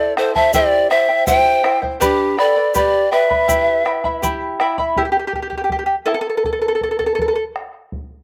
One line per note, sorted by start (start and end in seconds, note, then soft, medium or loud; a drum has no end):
0.00 0.16 E4 medium
0.00 0.13 A4 medium
0.00 0.17 A4 medium
0.00 0.16 C5 medium
0.00 0.13 D5 loud
0.00 0.16 E5 medium
0.00 0.17 A5 medium
0.17 0.35 E4 medium
0.17 0.34 A4 medium
0.17 0.35 C5 medium
0.17 0.34 C5 medium
0.17 0.36 E5 medium
0.17 0.34 A5 medium
0.17 bombo rim medium
0.34 0.53 E4 soft
0.34 0.54 C5 medium
0.34 0.54 C5 soft
0.34 0.56 E5 loud
0.34 0.54 A5 medium
0.34 bombo low medium
0.53 0.90 E4 medium
0.53 0.92 G4 medium
0.53 0.91 G4 medium
0.53 0.90 C5 medium
0.53 0.91 D5 loud
0.53 0.89 E5 medium
0.53 0.91 G5 medium
0.53 bombo low medium
0.53 shaker medium
0.90 1.09 E4 medium
0.90 1.27 C5 medium
0.90 1.08 C5 medium
0.90 1.26 E5 medium
0.90 1.09 E5 medium
0.90 1.07 G5 medium
0.90 bombo rim medium
1.09 1.26 E4 soft
1.09 1.26 C5 medium
1.09 1.26 G5 medium
1.27 1.63 E4 medium
1.27 1.64 G4 medium
1.27 1.64 C5 medium
1.27 1.79 C5 loud
1.27 1.62 E5 medium
1.27 1.78 G5 loud
1.27 1.64 G5 medium
1.27 bombo low medium
1.27 shaker medium
1.63 1.83 E4 medium
1.63 1.82 C5 medium
1.63 1.82 E5 medium
1.63 1.81 G5 medium
1.63 bombo rim medium
1.82 2.00 E4 soft
1.82 2.01 C5 soft
1.82 1.99 G5 medium
1.82 bombo low medium
2.00 2.41 D4 medium
2.00 2.37 G4 medium
2.00 2.40 G4 loud
2.00 2.37 B4 medium
2.00 2.37 D5 medium
2.00 2.36 G5 medium
2.00 2.38 B5 medium
2.00 bombo low medium
2.00 shaker medium
2.37 2.76 A4 medium
2.37 2.56 B4 medium
2.37 2.56 D5 medium
2.37 2.75 D5 medium
2.37 2.56 G5 medium
2.37 2.55 B5 medium
2.37 bombo rim medium
2.56 2.74 B4 soft
2.56 2.74 D5 medium
2.56 2.74 B5 medium
2.74 3.11 G4 medium
2.74 3.15 G4 medium
2.74 3.11 B4 medium
2.74 3.11 D5 medium
2.74 3.14 D5 loud
2.74 3.10 G5 medium
2.74 3.12 B5 medium
2.74 bombo low medium
2.74 shaker medium
3.11 3.29 B4 medium
3.11 4.23 B4 medium
3.11 3.29 D5 medium
3.11 4.22 E5 medium
3.11 3.30 G5 medium
3.11 3.28 B5 medium
3.11 bombo rim medium
3.29 3.48 B4 soft
3.29 3.48 D5 soft
3.29 3.48 B5 medium
3.29 bombo low medium
3.48 3.84 E4 medium
3.48 3.85 G4 medium
3.48 3.85 E5 medium
3.48 3.84 G5 medium
3.48 3.85 B5 medium
3.48 bombo low medium
3.48 shaker medium
3.85 4.04 E4 medium
3.85 4.04 E5 medium
3.85 4.04 G5 medium
3.85 4.03 B5 medium
3.85 bombo rim medium
4.04 4.22 E4 medium
4.04 4.22 E5 medium
4.04 4.22 B5 medium
4.04 bombo low medium
4.22 4.59 E4 medium
4.22 4.59 G4 medium
4.22 4.60 E5 medium
4.22 4.59 G5 medium
4.22 4.60 B5 loud
4.22 bombo low medium
4.22 shaker medium
4.60 4.78 E4 medium
4.60 4.78 E5 medium
4.60 4.78 G5 medium
4.60 4.77 B5 medium
4.60 bombo rim medium
4.78 4.97 E4 medium
4.78 4.97 E5 medium
4.78 4.96 B5 medium
4.78 bombo low soft
4.96 5.04 E4 medium
4.96 5.04 G4 medium
4.96 bombo low medium
5.05 5.11 G4 soft
5.12 5.18 G4 medium
5.27 5.34 G4 medium
5.33 5.41 G4 soft
5.33 bombo low soft
5.42 5.49 G4 soft
5.50 5.56 G4 soft
5.50 bombo low soft
5.58 5.63 G4 medium
5.64 5.71 G4 medium
5.70 5.78 G4 soft
5.70 bombo low medium
5.79 5.85 G4 soft
5.86 5.94 G4 medium
6.06 6.14 E4 medium
6.06 6.13 A4 medium
6.06 bombo rim soft
6.14 6.20 A4 medium
6.21 6.28 A4 medium
6.30 6.36 A4 medium
6.37 6.44 A4 medium
6.44 6.51 A4 medium
6.44 bombo low medium
6.53 6.60 A4 medium
6.62 6.67 A4 medium
6.68 6.74 A4 medium
6.75 6.82 A4 medium
6.81 6.90 A4 medium
6.81 bombo low soft
6.91 6.98 A4 medium
6.99 7.05 A4 medium
6.99 bombo low soft
7.06 7.13 A4 medium
7.15 7.20 A4 medium
7.15 bombo low medium
7.22 7.27 A4 medium
7.28 7.34 A4 medium
7.36 7.43 A4 medium
7.56 bombo rim soft
7.92 bombo low medium